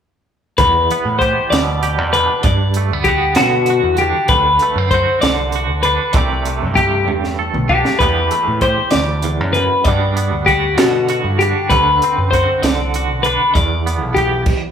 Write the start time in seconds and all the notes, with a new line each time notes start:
0.58 E2 B4, kick, closed hi-hat
0.91 B3, closed hi-hat
1.05 A2
1.19 G4 C5, kick, closed hi-hat
1.50 D2 B2 D5, snare, closed hi-hat
1.83 G4, closed hi-hat
1.98 E2
2.13 D4 B4, closed hi-hat
2.43 G2 D5, kick, closed hi-hat
2.74 A3, closed hi-hat
2.91 D2 B3
3.04 G4, kick, closed hi-hat
3.08 F#4
3.35 B2 D3 F#4, snare, closed hi-hat
3.66 closed hi-hat
3.70 F#4
3.83 E2
3.97 G4, closed hi-hat
4.01 D4
4.28 D2 D3 B4, kick, closed hi-hat
4.59 A3, closed hi-hat
4.76 F#2 C4
4.91 F#4 C5, kick, closed hi-hat
5.21 C2 D3 D5, snare, closed hi-hat
5.52 F#4, closed hi-hat
5.69 D2
5.83 D4 B4, closed hi-hat
6.13 C2 C3 E3 A3 D5, kick, closed hi-hat
6.17 D4 G4
6.45 A3, closed hi-hat
6.62 G2
6.75 G4, kick, closed hi-hat
7.08 E2 G2, high tom
7.24 snare
7.39 A4
7.54 B1, mid tom
7.69 D4 G4, kick
7.85 snare
7.99 E2 E3 B3 D4 B4, kick, closed hi-hat
8.03 G4
8.31 A3, closed hi-hat
8.48 A2
8.61 G4 C5, kick, closed hi-hat
8.91 D2 D5, snare, closed hi-hat
9.22 E2, closed hi-hat
9.41 F#2
9.53 F#2 B4, closed hi-hat
9.84 G2 G3 B3 D5, kick, closed hi-hat
9.89 D4 F#4
10.16 B3, closed hi-hat
10.31 D2
10.46 F#4 G4, kick, closed hi-hat
10.77 B2 D3 F#4, snare, closed hi-hat
11.09 F#4, closed hi-hat
11.24 G2
11.39 D4 G4, closed hi-hat
11.70 D2 D3 B4, kick, closed hi-hat
12.02 C4, closed hi-hat
12.18 F#2
12.31 F#4 C5, kick, closed hi-hat
12.63 C2 D3 D5, snare, closed hi-hat
12.94 F#4, closed hi-hat
13.09 B1
13.23 D4 B4, closed hi-hat
13.54 E2 D5, kick, closed hi-hat
13.86 B3, closed hi-hat
14.02 B1
14.15 G4, kick, closed hi-hat
14.46 kick, crash